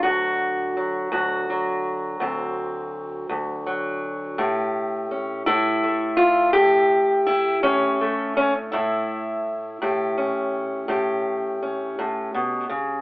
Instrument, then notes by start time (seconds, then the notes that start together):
steel-string acoustic guitar
Already playing: F#3
0.03 D2 F#4
0.77 F#3
1.12 D2 F#4
1.50 F#3
2.20 D2 C4
3.29 D2
3.66 F#3
4.38 A2 G4
5.11 C#4
5.46 A2 E4
5.83 A3
6.17 F4
6.53 A2 G4
7.26 E4
7.63 A2 C#4
8.01 A3
8.37 C#4
8.72 A2 E4
9.82 A2 G4
10.18 C#4
10.88 A2 G4
11.63 C#4
11.99 A2
12.34 B2
12.69 C#3